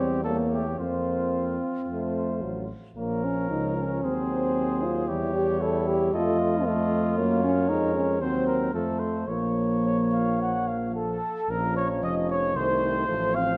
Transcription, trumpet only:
0.00 0.24 G4 soft
0.24 0.36 A4 soft
0.52 0.78 G4 soft
0.79 2.65 F4 soft
2.97 4.00 A#4 soft
4.03 5.10 G#4 soft
5.08 5.62 G4 medium
5.61 6.13 E4 soft
6.13 6.39 A4 medium
6.39 7.70 F4 medium
7.69 8.20 A#4 soft
8.21 8.46 C5 medium
8.47 8.73 A#4 soft
8.74 9.01 A4 soft
8.99 9.29 C5 soft
9.27 10.77 C#5 soft
10.94 11.51 A4 medium
11.50 11.76 A#4 medium
11.77 11.89 C#5 medium
12.04 12.16 D#5 medium
12.31 12.58 C#5 medium
12.56 13.36 C5 medium
13.35 13.57 F5 medium

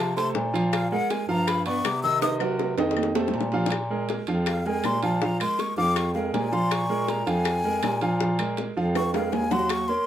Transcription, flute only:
0.00 0.16 A5 medium
0.16 0.28 C6 loud
0.73 0.90 F5 medium
0.91 1.12 F#5 medium
1.11 1.29 G#5 medium
1.29 1.49 A#5 medium
1.48 1.65 B5 medium
1.66 1.88 C#6 medium
1.86 2.02 D6 medium
2.03 2.21 E6 loud
2.22 2.33 D#6 medium
4.48 4.67 F5 medium
4.66 4.87 G#5 medium
4.85 5.03 C6 medium
5.04 5.24 A5 medium
5.23 5.40 A#5 medium
5.41 5.61 C6 medium
5.60 5.77 C#6 medium
5.77 5.98 D6 loud
5.96 6.14 C#6 loud
6.14 6.37 F5 medium
6.36 6.54 G#5 medium
6.53 6.74 C6 medium
6.72 7.11 C#6 medium
7.10 7.30 A#5 medium
7.29 8.22 G#5 loud
8.96 9.13 C#6 medium
9.14 9.34 F5 medium
9.33 9.54 G#5 medium
9.52 9.72 C6 medium
9.70 9.90 C#6 loud
9.88 10.07 C6 loud

